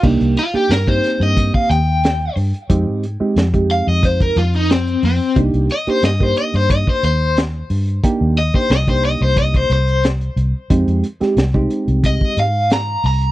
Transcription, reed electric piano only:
X:1
M:4/4
L:1/16
Q:1/4=90
K:Cm
V:1 name="Reed electric piano"
[B,DEG]2 z [B,DEG] z [B,CEG]4- [B,CEG] z6 | [A,CEG]2 z [A,CEG] z [A,CEG]4- [A,CEG] z6 | [B,DEG]2 z [B,DEG] z [B,DEG]4- [B,DEG] z6 | [B,DEG]2 z [B,DEG] z [B,DEG]4- [B,DEG] z6 |
[A,CEG]2 z [A,CEG] z [A,CEG]4- [A,CEG] z6 |]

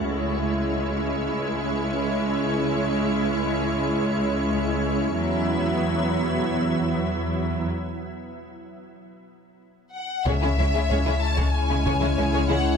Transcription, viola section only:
X:1
M:4/4
L:1/16
Q:1/4=94
K:C#m
V:1 name="Viola section"
[G,E]16- | [G,E]16 | [F,E]16 | z16 |
[G,C] [G,C] [G,C] [G,C] [G,C] [G,C] z [G,C] z [G,C] [G,C] [G,C] [G,C] [G,C] [G,C] z |]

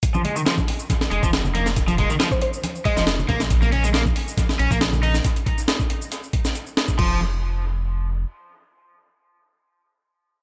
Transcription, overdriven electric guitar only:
X:1
M:4/4
L:1/16
Q:1/4=138
K:Fm
V:1 name="Overdriven electric guitar" clef=bass
z F, A, E, F, z4 z A, F, z2 B, z | z F, A, E, F, z4 z A, F, z2 B, z | z B, D A, B, z4 z D B, z2 E z | z16 |
F,2 z12 z2 | z16 |]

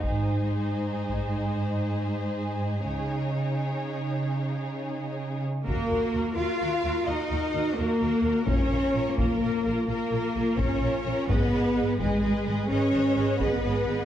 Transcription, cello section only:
X:1
M:12/8
L:1/8
Q:3/8=85
K:Db
V:1 name="Cello section"
A,,12 | D,8- D,3 z | [K:Ebm] B,3 F3 E3 B,3 | D3 B,3 B,3 D3 |
C3 A,3 D3 C3 |]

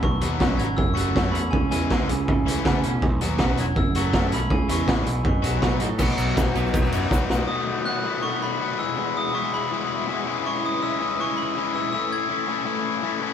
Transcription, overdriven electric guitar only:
X:1
M:4/4
L:1/8
Q:1/4=162
K:Bmix
V:1 name="Overdriven electric guitar"
z [F,B,DF] [F,B,DF] z2 [F,A,CF] [F,A,CF] z | z [E,G,CE] [E,G,CE] z2 [E,A,CE] [E,A,CE] z | z [F,B,DF] [F,B,DF] z2 [F,A,CF] [F,A,CF] z | z [E,G,CE] [E,G,CE] z2 [F,B,DF] [F,B,DF] z |
[B,,F,B,DF]4- [B,,F,B,DF] [B,,F,B,DF] [B,,F,B,DF]2 | [B,,D,A,B,F]2 [B,,D,A,B,F] [B,,D,A,B,F] [B,,D,A,B,F]2 [B,,D,A,B,F] [E,,B,,E,G,B,E] | [E,,B,,E,G,B,E]2 [E,,B,,E,G,B,E] [E,,B,,E,G,B,E] [E,,B,,E,G,B,E]2 [E,,B,,E,G,B,E] [E,G,CE] | [E,G,CE]2 [E,G,CE] [E,G,CE] [E,G,CE]2 [E,G,CE] [E,G,CE] |
[A,,E,A,CE]2 [A,,E,A,CE] [A,,E,A,CE] [A,,E,A,CE]2 [A,,E,A,CE] [A,,E,A,CE] |]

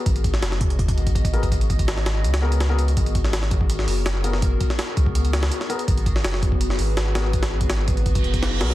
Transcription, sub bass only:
X:1
M:4/4
L:1/8
Q:1/4=165
K:G#m
V:1 name="Sub bass" clef=bass
G,,,2 F,,,3 G,,,3- | G,,,4 C,,4 | G,,,4- G,,, F,,,3- | F,,, z2 C,,3 z2 |
G,,,2 F,,,3 G,,,3- | G,,,4- G,,, F,,,2 B,,, |]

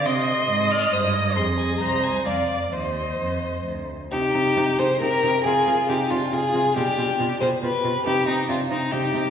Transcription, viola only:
X:1
M:3/4
L:1/8
Q:1/4=137
K:Cm
V:1 name="Viola"
e6 | A2 c2 d2 | c4- c z | E E E E E E |
F F F F F F | F F F F F F | E E E E E E |]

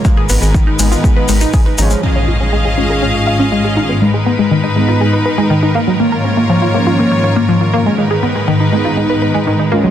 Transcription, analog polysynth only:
X:1
M:4/4
L:1/16
Q:1/4=121
K:G#dor
V:1 name="Analog polysynth"
z6 [D,G,B,]4- [D,G,B,] z3 [E,G,C]2- | [E,G,C]2 z4 [G,CE]8- [G,CE]2 | z6 [G,B,D]4- [G,B,D] [G,B,D] z4 | z6 [G,,E,A,C]8- [G,,E,A,C]2 |
z6 [G,B,D]4- [G,B,D] z3 [G,CE]2 |]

